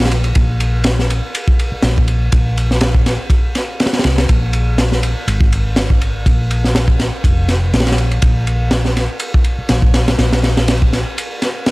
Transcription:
Already playing: A#1
0.05 snare, ride
0.11 ride
0.24 ride
0.35 A#1, kick, ride
0.60 ride
0.84 snare, ride
0.99 snare
1.10 ride
1.35 ride
1.48 kick
1.59 ride
1.72 muted fingered electric bass stroke
1.82 A#1, snare, ride
1.98 kick
2.08 ride
2.32 A#1, kick, ride
2.57 ride
2.71 snare
2.81 snare, ride
2.95 kick
3.06 snare, ride
3.30 kick, ride
3.55 snare, ride
3.80 snare, ride
3.86 snare, ride
3.93 snare, ride
3.99 snare, ride
4.04 C2, snare, ride
4.18 snare, ride
4.29 A#1, kick, ride
4.53 ride
4.78 snare, ride
4.92 snare
5.03 ride
5.27 G#1, ride
5.41 kick
5.52 ride
5.76 snare, ride
5.90 kick
6.01 ride
6.26 A#1, kick, ride
6.51 ride
6.64 snare
6.75 snare, ride
6.88 kick
7.00 snare, ride
7.24 F1, kick, ride
7.49 snare, ride
7.73 A#1, snare, ride
7.80 snare, ride
7.87 snare, ride
7.92 snare, ride
7.98 ride
8.11 ride
8.22 A#1, kick, ride
8.47 ride
8.71 snare, ride
8.85 snare
8.96 snare, ride
9.20 ride
9.34 kick
9.44 ride
9.58 muted fingered electric bass stroke
9.69 A#1, snare, ride
9.82 kick
9.94 snare, ride
10.08 snare, ride
10.19 A#1, snare, ride
10.33 snare, ride
10.44 snare, ride
10.57 snare, ride
10.68 snare, ride
10.82 kick
10.93 snare, ride
11.18 ride
11.42 snare, ride
11.66 snare, ride

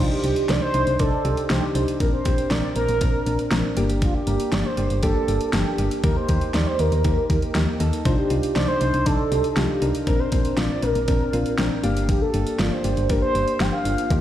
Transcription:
0.00 D4 D#4 C5
0.12 G4
0.24 C2 D4 D#4 C5, closed hi-hat
0.36 closed hi-hat
0.49 C2 D4 D#4 C5 D5, snare, closed hi-hat
0.62 C5
0.74 C2 D4 D#4 C5, closed hi-hat
0.87 C2, closed hi-hat
0.99 C2 D4 D#4 A4 D5, kick, closed hi-hat
1.25 C2 D4 D#4 G4, closed hi-hat
1.37 closed hi-hat
1.50 C2 D4 D#4 G4 C5, snare, closed hi-hat
1.75 C2 D4 D#4 C5, closed hi-hat
1.88 closed hi-hat
2.00 A#1 C4 D4 A#4, kick, closed hi-hat
2.13 C5
2.25 A#1 C4 D4 G4, kick, closed hi-hat
2.38 closed hi-hat
2.51 A#1 C4 D4 A#4 D5, snare, closed hi-hat
2.63 D5
2.76 A#1 C4 D4 A#4, closed hi-hat
2.88 A#1, closed hi-hat
3.01 A#1 C4 D4 A#4, kick, closed hi-hat
3.26 A#1 C4 D4 A#4, closed hi-hat
3.39 closed hi-hat
3.51 A#1 C4 D4 A#4, snare, closed hi-hat
3.77 G1 A#3 D4 G4, closed hi-hat
3.90 closed hi-hat
4.02 F4, kick, closed hi-hat
4.15 G4
4.27 G1 A#3 D4 A#4, closed hi-hat
4.40 closed hi-hat
4.52 G1 A#3 D4 G4 D5, snare, closed hi-hat
4.65 C5
4.77 G1 A#3 D4 G4, closed hi-hat
4.90 G1, closed hi-hat
5.03 G1 A#3 D4 G4 A4, kick, closed hi-hat
5.28 G1 A#3 D4 G4, closed hi-hat
5.41 closed hi-hat
5.53 G1 A#3 D4 G4 A4, snare, closed hi-hat
5.78 G1 A#3 D4 G4, closed hi-hat
5.91 closed hi-hat
6.04 D#2 A#3 D#4 G4 A#4, kick, closed hi-hat
6.17 C5
6.29 D#2 A#3 D#4 G4, kick, closed hi-hat
6.41 closed hi-hat
6.54 D#2 A#3 D#4 G4 D5, snare, closed hi-hat
6.67 C5
6.79 D#2 A#3 D#4 G4 A#4, closed hi-hat
6.92 D#2, closed hi-hat
7.04 D#2 A#3 D#4 G4, kick, closed hi-hat
7.30 D#2 A#3 D#4 G4, kick, closed hi-hat
7.42 closed hi-hat
7.55 D#2 A#3 D#4 G4, snare, closed hi-hat
7.80 D#2 A#3 D#4 A4, closed hi-hat
7.93 closed hi-hat
8.05 C2 D4 D#4 F4 C5, kick, closed hi-hat
8.18 G4
8.30 C2 D4 D#4 F4, closed hi-hat
8.43 closed hi-hat
8.56 C2 D4 D#4 C5 D5, snare, closed hi-hat
8.68 C5
8.81 C2 D4 D#4 C5, closed hi-hat
8.94 C2, closed hi-hat
9.06 C2 D4 D#4 A4 D5, kick, closed hi-hat
9.32 C2 D4 D#4 G4, closed hi-hat
9.44 closed hi-hat
9.56 C2 D4 D#4 F4 G4, snare, closed hi-hat
9.82 C2 D4 D#4 A#4, closed hi-hat
9.95 closed hi-hat
10.07 A#1 C4 D4 A#4, kick, closed hi-hat
10.19 C5
10.32 A#1 C4 D4 A#4, kick, closed hi-hat
10.45 closed hi-hat
10.57 A#1 C4 D4 F4 D5, snare, closed hi-hat
10.70 D5
10.82 A#1 C4 D4 A#4, closed hi-hat
10.95 A#1, closed hi-hat
11.08 A#1 C4 D4 A#4, kick, closed hi-hat
11.33 A#1 C4 D4 F4, closed hi-hat
11.46 closed hi-hat
11.58 A#1 C4 D4 A#4 G5, snare, closed hi-hat
11.84 G1 A#3 D4 G4 F5, closed hi-hat
11.97 closed hi-hat
12.09 G4, kick, closed hi-hat
12.22 A4
12.34 G1 A#3 D4 G4, closed hi-hat
12.47 closed hi-hat
12.59 G1 A#3 D4 F4 D5, snare, closed hi-hat
12.72 C5
12.84 G1 A#3 D4 G4, closed hi-hat
12.97 G1, closed hi-hat
13.10 G1 A#3 D4 G4 A#4, kick, closed hi-hat
13.22 C5
13.35 G1 A#3 D4 G4, closed hi-hat
13.48 closed hi-hat
13.60 G1 A#3 D4 G4 G5, snare, closed hi-hat
13.73 F5
13.85 G1 A#3 D4 F4, closed hi-hat
13.98 closed hi-hat
14.10 D#2 A#3 D#4 F4 G4, kick, closed hi-hat

